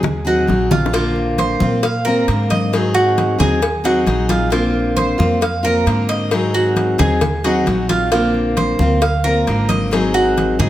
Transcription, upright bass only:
Already playing: D#2
0.48 A#1
1.61 A#2
2.28 G#2
3.39 D#2
4.06 A#1
5.19 F2
5.86 G#2
6.99 D#2
7.66 A#1
8.79 D2
9.47 G#1
10.59 G#2

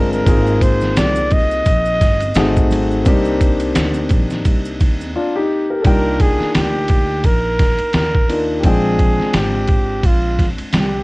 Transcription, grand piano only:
Already playing: G#3 C4 D4 F4 G#4
0.25 A#3 C4 D#4 F4 G#4
2.36 A3 C4 D#4 F#4 G#4
3.05 A#3 C4 D4 D#4 G4
5.16 D4 F4
5.36 D#4 G4
5.70 G4 A#4
5.84 A#3 D4 D#4 F4 G5
8.29 A#3 D4 D#4 F4 A#4
8.63 G#3 C4 D4 F4 G5

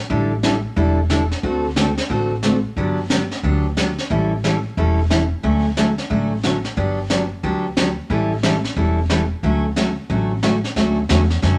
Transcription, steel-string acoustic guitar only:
0.10 D3 G3 D4 E4 A4
0.43 D3 G3 D4 E4 A4
0.76 D3 G3 D4 E4 A4
1.10 D3 G3 D4 E4 A4
1.43 D3 A3 C4 F#4 A4
1.76 D3 A3 C4 F#4 A4
2.10 D3 A3 C4 F#4 A4
2.44 D3 A3 C4 F#4 A4
2.77 D3 F#3 B3 D4 G4
3.10 D3 F#3 B3 D4 G4
3.43 D3 F#3 B3 D4 G4
3.77 D3 F#3 B3 D4 G4
4.10 E3 G3 C#4 E4 A4
4.44 E3 G3 C#4 E4 A4
4.78 E3 G3 C#4 E4 A4
5.10 E3 G3 C#4 E4 A4
5.43 D3 F#3 A3 C#4 F#4
5.77 D3 F#3 A3 C#4 F#4
6.10 D3 F#3 A3 C#4 F#4
6.44 D3 F#3 A3 C#4 F#4
6.77 D3 F#3 B3 D4 G4
7.10 D3 F#3 B3 D4 G4
7.43 D3 F#3 B3 D4 G4
7.77 D3 F#3 B3 D4 G4
8.10 E3 G3 C#4 E4 A4
8.43 E3 G3 C#4 E4 A4
8.76 E3 G3 C#4 E4 A4
9.10 E3 G3 C#4 E4 A4
9.43 D3 F#3 A3 C#4 F#4
9.77 D3 F#3 A3 C#4 F#4
10.10 D3 F#3 A3 C#4 F#4
10.43 D3 F#3 A3 C#4 F#4
10.76 D3 F#3 A3 C#4 F#4
11.09 D3 F#3 A3 C#4 F#4
11.42 D3 F#3 A3 C#4 F#4

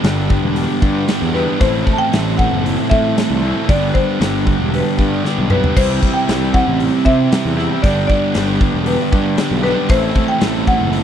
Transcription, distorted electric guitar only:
0.03 G2 D3 G3 B3 D4
0.81 G3 B3 D4
1.07 D3 G3 B3 D4
1.33 G3 B3 D4
1.59 A2 E3 A3 C4 E4
1.86 A3 C4 E4
2.11 A2 E3 A3 C4 E4
2.90 A3 C4 E4
3.17 E3 A3 C4 E4
3.42 A3 C4 E4
3.68 G2 D3 G3 B3 D4
3.94 G3 B3 D4
4.21 G2 D3 G3 B3 D4
4.98 G3 B3 D4
5.24 D3 G3 B3 D4
5.50 G3 B3 D4
5.76 C3 G3 C4 E4
6.02 G3 C4 E4
6.28 C3 G3 C4 E4
7.06 G3 C4 E4
7.32 C3 G3 C4 E4
7.57 G3 C4 E4
7.83 G2 D3 G3 B3 D4
8.09 G3 B3 D4
8.36 G2 D3 G3 B3 D4
9.12 G3 B3 D4
9.38 D3 G3 B3 D4
9.64 G3 B3 D4
9.90 A2 E3 A3 C4 E4
10.15 A3 C4 E4
10.41 A2 E3 A3 C4 E4

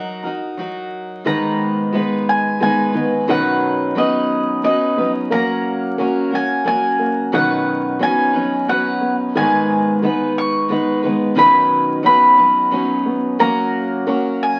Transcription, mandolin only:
Already playing: D#5
1.27 A#5
2.29 G#5
2.63 G#5
3.30 F#5
3.98 D#5
4.64 D#5
5.32 A#5
6.35 G#5
6.67 G#5
7.35 F#5
8.03 G#5
8.69 F#5
9.37 G#5
10.38 C#6
11.39 B5
12.06 B5
13.40 A#5
14.43 G#5

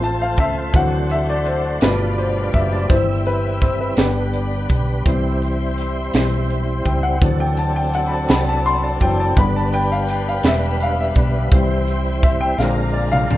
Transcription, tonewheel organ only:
Already playing: A3 C4 F4 C5
0.74 A3 D4 F#4
1.81 G3 F4 D5
2.89 C4 E4 E5
3.96 B3 D4 B4
5.06 C4 E4 C5
7.22 F#3 C4 D4 A4
9.37 G3 B3 B4
11.52 C4 E4 C5
12.59 G#3 D4 F4 A#4

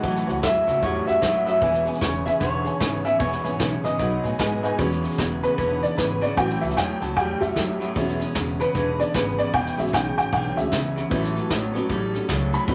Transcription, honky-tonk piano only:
0.02 C#5 E5 A5
0.27 C#5 E5 F#5
0.42 C#5 E5 A5
0.67 C#5 E5 A5
0.82 C#5 E5 F#5
1.06 C#5 E5 F#5
1.21 C#5 E5 F#5
1.46 C#5 E5 A5
1.60 B4 E5 G#5
1.86 B4 E5 G#5
2.01 B4 E5 G#5
2.26 B4 E5 G#5
2.41 B4 E5 F#5
2.65 B4 E5 G#5
2.79 B4 E5 G#5
3.04 B4 E5 G#5
3.19 B4 E5 G#5
3.44 B4 E5 G#5
3.59 B4 E5
3.84 B4 E5 G#5
4.00 B4 D#5 F#5
4.23 B4 D#5 G#5
4.38 B4 D#5 G#5
4.63 B4 D#5 G#5
4.78 F#3 G#3 C#4
5.43 B4
5.83 D5
5.97 B4
6.22 D5
6.36 F#3 B3 C#4 G5
6.61 E5
6.77 G5
7.02 A5
7.17 G5
7.41 G4 E5
7.95 F#3 G#3 C#4
8.61 B4
9.00 D5
9.15 B4
9.38 D5
9.54 G5
9.78 F#3 G#3 C#4 E5
9.94 G5
10.18 G5
10.33 G5
10.56 F#3 G#3 C#4 E5
11.10 F#3 B3 C#4
11.74 F#3 B3 C#4
12.54 B5
12.68 F#3 B3 C#4

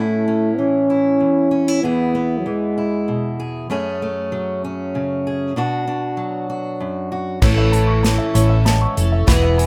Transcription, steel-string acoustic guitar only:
Already playing: A2 C#4 E4
0.28 C#4
0.59 E3
0.90 E4
1.20 E2
1.51 C#4
1.68 E4
1.83 E2 B3 E4 G#4
2.15 B3
2.46 E3
2.78 E4
3.08 B2
3.40 G#4
3.70 F#2 A3 C#4 G#4
4.02 A3
4.32 F#3
4.64 C#4
4.95 C#3
5.27 G#4
5.56 B2 D4 F#4
5.87 D4
6.17 F#3
6.50 F#4
6.80 F#2
7.12 F#4
7.42 A2 E4
7.74 E4
8.03 E3
8.34 A2
8.64 G#2
9.26 E2 E3 B3 E4 G#4
9.58 E4

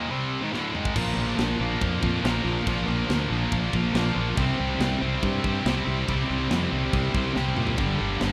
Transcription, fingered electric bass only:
0.96 A#1
1.17 A#1
1.38 A#1
1.60 A#1
1.82 F2
2.03 F2
2.24 A#1
2.45 A#1
2.67 A#1
2.88 A#1
3.09 D2
3.31 A#1
3.52 A#1
3.73 A#1
3.94 A#1
4.16 A#1
4.37 C2
4.60 C2
4.80 C2
5.02 C2
5.23 G2
5.44 G2
5.65 C2
5.87 C2
6.09 C2
6.30 C2
6.51 F2
6.72 C2
6.93 C2
7.14 C2
7.36 C2
7.58 A#2
7.78 G1
8.01 G1
8.22 G1

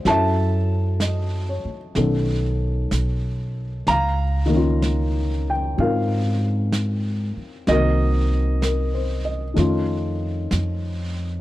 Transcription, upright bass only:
0.05 F#2
1.65 muted upright bass stroke
1.96 B1
2.92 B1
3.88 C#2
5.78 G#2
7.37 muted upright bass stroke
7.68 C2
9.57 F2
10.52 F2

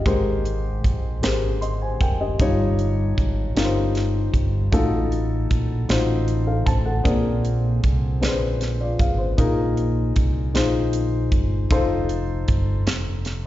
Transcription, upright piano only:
Already playing: D#5
0.06 G#2 G4 G#4 A#4 C5
1.23 G4 G#4 A#4 C5
1.61 D#5 C6
1.82 C5 G#5
2.01 A#4 G5
2.21 G4 D#5
2.40 G2 D#4 F4 G4 C#5
3.57 D#4 F4 G4 A#4
3.64 C5
4.72 A2 D#4 F4 F#4 A4
5.89 D#4 F4 F#4 C5
6.47 A4 F5
6.66 C5 A5
6.85 A4 F#5
7.04 A#2 C4 D4 G#4 A#4
8.21 C4 D4 G#4 B4
8.28 C5
8.81 F4 D5
9.00 G#4 F5
9.18 C5
9.38 A#2 D#4 F4 G#4 A#4
10.54 D#4 F4 G#4 C5
11.70 D#4 F4 A4 C5

